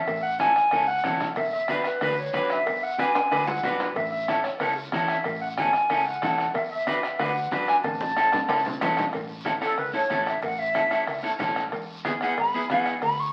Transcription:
Already playing: clarinet E5
0.07 fingered electric bass A1, bombo low, bombo rim, cowbell, high conga, long guiro
0.22 clarinet F#5
0.39 clean electric guitar C#4 E4 A4, clarinet G#5, bombo rim, high conga, short guiro
0.56 bombo rim, short guiro
0.71 fingered electric bass C#2, clean electric guitar C#4 E4 A4, bombo rim, cowbell, high conga, long guiro
0.87 clarinet F#5
1.04 fingered electric bass E2, clean electric guitar C#4 E4 A4, bombo low, bombo rim, high conga, low conga, low timbale, short guiro
1.20 bombo rim, low conga, short guiro
1.36 fingered electric bass B1, clarinet E5, bombo low, bombo rim, cowbell, high conga, long guiro
1.53 clarinet E5
1.68 clean electric guitar D4 F#4 B4, bombo rim, high conga, short guiro
1.84 clarinet B4, bombo rim, short guiro
2.00 fingered electric bass D2, clean electric guitar D4 F#4 B4, bombo rim, cowbell, high conga, long guiro
2.19 clarinet C#5
2.33 fingered electric bass F#2, clean electric guitar D4 F#4 B4, bombo low, bombo rim, high conga, short guiro
2.49 clarinet E5, bombo rim, short guiro
2.66 fingered electric bass B1, bombo low, bombo rim, cowbell, high conga, long guiro
2.83 clarinet F#5
2.98 clean electric guitar D4 F#4 B4, clarinet G#5, bombo rim, high conga, short guiro
3.15 bombo rim, high timbale, short guiro
3.31 fingered electric bass D2, clean electric guitar D4 F#4 B4, bombo rim, cowbell, high conga, high timbale, long guiro
3.47 clarinet F#5, low timbale
3.63 fingered electric bass F#2, clean electric guitar D4 F#4 B4, bombo low, bombo rim, high conga, low conga, short guiro
3.80 bombo rim, low timbale, short guiro
3.96 fingered electric bass A1, clarinet E5, bombo low, bombo rim, cowbell, high conga, long guiro
4.11 clarinet E5
4.28 clean electric guitar C#4 E4 A4, bombo rim, high conga, short guiro
4.44 clarinet C#5, bombo rim, short guiro
4.59 fingered electric bass C#2, clean electric guitar C#4 E4 A4, clarinet B4, bombo rim, cowbell, high conga, long guiro
4.92 fingered electric bass E2, clean electric guitar C#4 E4 A4, bombo low, bombo rim, high conga, short guiro
5.08 clarinet E5, bombo rim, short guiro
5.24 fingered electric bass A1, bombo low, bombo rim, cowbell, high conga, long guiro
5.41 clarinet F#5
5.57 clean electric guitar C#4 E4 A4, clarinet G#5, bombo rim, high conga, short guiro
5.73 bombo rim, short guiro
5.90 fingered electric bass C#2, clean electric guitar C#4 E4 A4, bombo rim, cowbell, high conga, long guiro
6.06 clarinet F#5
6.22 fingered electric bass E2, clean electric guitar C#4 E4 A4, bombo low, bombo rim, high conga, low conga, short guiro
6.38 bombo rim, short guiro
6.54 fingered electric bass B1, clarinet E5, bombo low, bombo rim, cowbell, high conga, long guiro
6.71 clarinet E5
6.87 clean electric guitar D4 F#4 B4, bombo rim, high conga, short guiro
7.03 bombo rim, short guiro
7.19 fingered electric bass D2, clean electric guitar D4 F#4 B4, clarinet F#5, bombo rim, cowbell, high conga, long guiro
7.51 fingered electric bass F#2, clean electric guitar D4 F#4 B4, bombo low, bombo rim, high conga, low timbale, short guiro
7.68 clarinet G#5, bombo rim, short guiro
7.83 fingered electric bass A1, clarinet A5, bombo low, bombo rim, cowbell, high conga, long guiro
8.01 high conga
8.17 clean electric guitar C#4 E4 A4, bombo rim, short guiro
8.32 bombo rim, low conga, high timbale, short guiro
8.49 fingered electric bass C#2, clean electric guitar C#4 E4 A4, bombo rim, cowbell, high timbale, long guiro
8.65 low conga, low timbale
8.81 fingered electric bass E2, clean electric guitar C#4 E4 A4, bombo low, bombo rim, low conga, low timbale, short guiro
8.97 bombo rim, low conga, low timbale, short guiro
9.13 fingered electric bass A1, bombo low, bombo rim, cowbell, high conga, long guiro
9.45 clean electric guitar C#4 E4 A4, bombo rim, high conga, short guiro
9.61 clean electric guitar C#4 E4 A4, flute A4, bombo rim, short guiro
9.78 fingered electric bass C#2, flute B4, bombo rim, cowbell, high conga, long guiro
9.93 clean electric guitar C#4 E4 A4, flute C#5
10.10 fingered electric bass A1, clean electric guitar C#4 E4 A4, bombo low, bombo rim, high conga, short guiro
10.26 flute E5, bombo rim, short guiro
10.42 fingered electric bass A1, flute F#5, bombo low, bombo rim, cowbell, high conga, long guiro
10.59 flute E5
10.75 clean electric guitar C#4 E4 A4, bombo rim, high conga, short guiro
10.90 clean electric guitar C#4 E4 A4, bombo rim, short guiro
11.07 fingered electric bass C#2, bombo rim, cowbell, high conga, long guiro
11.23 clean electric guitar C#4 E4 A4
11.39 fingered electric bass A1, clean electric guitar C#4 E4 A4, bombo low, bombo rim, high conga, low conga, low timbale, short guiro
11.56 bombo rim, short guiro
11.72 fingered electric bass E1, bombo low, bombo rim, cowbell, high conga, long guiro
12.05 clean electric guitar B3 E4 G#4, bombo rim, high conga, short guiro
12.21 clean electric guitar B3 E4 G#4, flute F#5, bombo rim, short guiro
12.37 fingered electric bass G#1, flute B5, bombo rim, cowbell, high conga, long guiro
12.54 clean electric guitar B3 E4 G#4
12.70 fingered electric bass E1, clean electric guitar B3 E4 G#4, flute F#5, bombo low, bombo rim, high conga, short guiro
12.86 bombo rim, short guiro
13.02 fingered electric bass D2, flute B5, bombo low, bombo rim, cowbell, high conga, long guiro
13.20 flute C#6

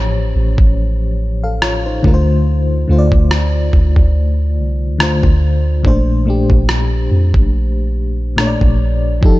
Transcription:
Already playing: 808-style bass A1, fm electric piano A2 F3 C#4 G4 C5 C#5
0.35 808-style bass A1
0.58 808-style bass A1, kick
1.44 fm electric piano A4 F5
1.62 fm electric piano F4 C#5, cross-stick
1.86 fm electric piano D#4 C5
2.03 808-style bass D2, fm electric piano D3 A3 F4, kick
2.07 fm electric piano A#4
2.14 fm electric piano C5
2.88 808-style bass D2, fm electric piano D3 A3 F4
2.92 fm electric piano C5
2.99 fm electric piano D5
3.12 808-style bass D2, kick
3.31 cross-stick
3.73 808-style bass D2, kick
3.96 808-style bass D2, kick
4.58 808-style bass C2
4.90 808-style bass D2
4.98 fm electric piano D3 A3 F4, cross-stick
5.03 fm electric piano C5
5.23 808-style bass D2, kick
5.83 808-style bass A#1, fm electric piano A#2 A3 D4, kick
5.87 fm electric piano C5
6.25 fm electric piano A#2 A3 D4
6.30 fm electric piano G4
6.50 808-style bass A#1, kick
6.69 cross-stick
7.11 808-style bass F2
7.34 808-style bass A#1, kick
8.36 fm electric piano A#2 A3 D4, cross-stick
8.41 fm electric piano C#5
8.47 fm electric piano D5
8.61 808-style bass A#1, kick
9.21 808-style bass F1, fm electric piano F3 D#4 G4, kick
9.26 fm electric piano A4

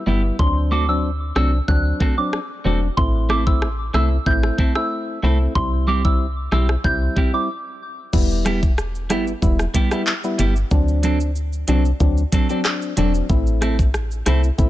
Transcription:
0.06 fm bass G1, synth stab G3 B3 E4, clean electric guitar G3 B3 E4 G4
0.39 fm bass D2, synth stab F#3 C4 D4, synth bell C6, kick
0.71 clean electric guitar A3 C4 F#4 A4, synth bell D6
0.88 synth stab F#3 C4 D4, synth bell E6
1.36 fm bass C2, synth stab F#3 C4 D4, clean electric guitar A3 C4 F#4 A4, synth bell E6, cross-stick
1.68 fm bass D2, synth stab F#3 C4 D4, synth bell F#6, kick
2.00 clean electric guitar A3 C4 F#4 A4, kick
2.17 synth stab F#3 C4 D4, synth bell D6
2.33 cross-stick
2.65 fm bass E1, synth stab F#3 C4 D4, clean electric guitar A3 C4 F#4 A4
2.97 fm bass A1, synth stab A3 C4 E4, synth bell C6, kick
3.29 clean electric guitar A3 C4 E4 A4, synth bell D6, cross-stick
3.46 synth stab A3 C4 E4, synth bell E6, kick
3.62 cross-stick
3.94 fm bass C2, clean electric guitar A3 C4 E4 A4, synth stab A3 C4 E4, synth bell E6, cross-stick
4.26 fm bass A1, synth stab A3 C4 E4, synth bell G6, kick
4.43 cross-stick
4.58 clean electric guitar A3 C4 E4 A4, kick
4.75 synth stab A3 C4 E4, synth bell E6, cross-stick
5.23 fm bass C2, clean electric guitar A3 C4 E4 A4, synth stab A3 C4 E4
5.55 fm bass C2, synth stab G3 C4 E4, synth bell C6, kick
5.87 clean electric guitar G3 C4 E4 G4, synth bell D6
6.04 synth stab G3 C4 E4, synth bell E6, kick
6.52 fm bass B1, synth stab G3 C4 E4, clean electric guitar G3 C4 E4 G4, synth bell E6, cross-stick
6.69 cross-stick
6.84 fm bass C2, synth stab G3 C4 E4, synth bell G6, kick
7.16 clean electric guitar G3 C4 E4 G4, kick
7.33 synth stab G3 C4 E4, synth bell D6
8.13 fm bass E1, synth stab G3 B3 E4, kick, crash, shaker
8.31 shaker
8.45 clean electric guitar G3 B3 E4 G4, cross-stick, closed hi-hat, shaker
8.63 kick, shaker
8.78 cross-stick, shaker
8.95 shaker
9.10 fm bass G1, synth stab G3 B3 E4, clean electric guitar G3 B3 E4 G4, cross-stick, closed hi-hat, shaker
9.27 shaker
9.42 fm bass E1, synth stab G3 B3 E4, kick, shaker
9.59 cross-stick, shaker
9.74 clean electric guitar G3 B3 E4 G4, kick, closed hi-hat, shaker
9.91 synth stab G3 B3 E4, clean electric guitar G3 B3 E4 G4, cross-stick, shaker
10.07 clap, shaker
10.24 synth stab G3 B3 E4, shaker
10.38 fm bass G1, clean electric guitar G3 B3 E4 G4, closed hi-hat, shaker
10.56 shaker
10.71 fm bass D2, synth stab F#3 C4 D4, kick, shaker
10.88 shaker
11.03 clean electric guitar F#3 C4 D4 A4, closed hi-hat, shaker
11.20 shaker
11.36 shaker
11.53 shaker
11.68 fm bass C2, clean electric guitar F#3 C4 D4 A4, synth stab F#3 C4 D4, closed hi-hat, shaker
11.85 shaker
12.00 fm bass D2, synth stab F#3 C4 D4, kick, shaker
12.17 shaker
12.32 clean electric guitar F#3 C4 D4 A4, kick, closed hi-hat, shaker
12.49 synth stab F#3 C4 D4, clean electric guitar F#3 C4 D4 A4, shaker
12.65 cross-stick, clap, shaker
12.82 shaker
12.97 fm bass E1, clean electric guitar F#3 C4 D4 A4, synth stab F#3 C4 D4, closed hi-hat, shaker
13.15 shaker
13.29 fm bass A1, synth stab A3 C4 E4, kick, shaker
13.47 shaker
13.61 clean electric guitar A3 C4 E4 A4, cross-stick, closed hi-hat, shaker
13.79 kick, shaker
13.94 cross-stick, shaker
14.11 shaker
14.26 fm bass C2, synth stab A3 C4 E4, clean electric guitar A3 C4 E4 A4, cross-stick, closed hi-hat, shaker
14.44 shaker
14.58 fm bass A1, synth stab A3 C4 E4, kick, shaker

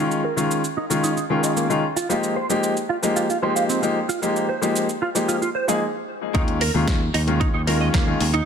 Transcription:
Already playing: grand piano D#3 G#3 C#4 F4
0.11 cabasa
0.24 clean electric guitar A#4
0.36 grand piano D#3 G#3 C#4 F4, cabasa
0.51 cabasa
0.64 cabasa
0.77 clean electric guitar D#4
0.90 grand piano D#3 G#3 C#4 F4, cabasa
1.04 clean electric guitar D#4, cabasa
1.17 clean electric guitar D#4, cabasa
1.30 grand piano D#3 G#3 C#4 F4, clean electric guitar A#4
1.43 clean electric guitar D#5, cabasa
1.57 clean electric guitar A#3, cabasa
1.69 grand piano D#3 G#3 C#4 F4, cabasa
1.96 clean electric guitar F4, cabasa
2.09 grand piano F3 G#3 A#3 D#4 G4, clean electric guitar F4, cabasa
2.23 cabasa
2.36 clean electric guitar C5
2.49 grand piano F3 G#3 A#3 D#4 G4, cabasa
2.63 cabasa
2.77 cabasa
2.89 clean electric guitar F4
3.02 grand piano F3 G#3 A#3 D#4 G4, cabasa
3.16 clean electric guitar F4, cabasa
3.30 clean electric guitar F4, cabasa
3.42 grand piano F3 G#3 A#3 D#4 G4, clean electric guitar C5
3.56 clean electric guitar F5, cabasa
3.69 clean electric guitar C4, cabasa
3.82 grand piano F3 G#3 A#3 D#4 G4, cabasa
4.09 clean electric guitar F4, cabasa
4.22 grand piano F3 G#3 A#3 D#4 G4, clean electric guitar F4, cabasa
4.36 cabasa
4.49 clean electric guitar C5
4.61 grand piano F3 G#3 A#3 D#4 G4, cabasa
4.76 cabasa
4.89 cabasa
5.02 clean electric guitar F4
5.15 grand piano F3 G#3 A#3 D#4 G4, cabasa
5.28 clean electric guitar F4, cabasa
5.42 clean electric guitar F4, cabasa
5.55 clean electric guitar C5
5.67 grand piano F3 G#3 A#3 D#4 G#4, clean electric guitar F5, cabasa
6.34 picked electric bass D#2, grand piano D#3 G#3 C#4 F4, clean electric guitar D#4, kick, closed hi-hat
6.48 closed hi-hat
6.61 clean electric guitar A#4, open hi-hat
6.74 picked electric bass D#2, grand piano D#3 G#3 C#4 F4
6.88 kick, snare, closed hi-hat
7.14 picked electric bass D#2, clean electric guitar D#4, open hi-hat
7.27 grand piano D#3 G#3 C#4 F4, closed hi-hat
7.40 clean electric guitar D#4, kick, closed hi-hat
7.54 picked electric bass D#2, clean electric guitar D#4
7.67 grand piano D#3 G#3 C#4 F4, clean electric guitar A#4, open hi-hat
7.81 clean electric guitar D#5
7.94 picked electric bass D#2, clean electric guitar A#3, kick, snare, closed hi-hat
8.06 grand piano D#3 G#3 C#4 F4
8.21 picked electric bass D#2, open hi-hat
8.34 clean electric guitar D#4, closed hi-hat

